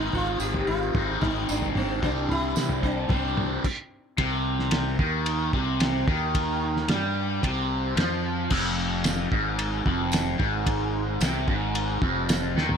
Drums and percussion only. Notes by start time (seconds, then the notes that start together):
0.13 floor tom
0.40 tambourine
0.54 floor tom
0.95 kick, floor tom, mid tom
1.22 kick, floor tom, mid tom
1.49 tambourine
1.62 floor tom
1.75 mid tom
2.02 kick, floor tom
2.29 floor tom
2.56 snare, tambourine
2.69 floor tom
2.83 kick
3.09 kick, floor tom, mid tom
3.37 floor tom, mid tom
3.64 kick, crash
4.18 kick, ride bell
4.59 snare
4.71 snare, ride bell
4.99 kick
5.26 ride bell
5.53 kick
5.80 snare, ride bell
6.08 kick
6.35 kick, ride bell
6.76 snare
6.88 snare, ride bell
7.43 kick, ride bell
7.97 snare, ride bell
8.50 kick, crash
9.04 snare, ride bell, tambourine
9.32 kick
9.59 ride bell
9.86 kick
10.12 snare, ride bell, tambourine
10.40 kick
10.66 kick, ride bell
11.21 snare, ride bell, tambourine
11.48 kick
11.75 ride bell
12.02 kick
12.29 snare, ride bell, tambourine
12.58 snare
12.69 floor tom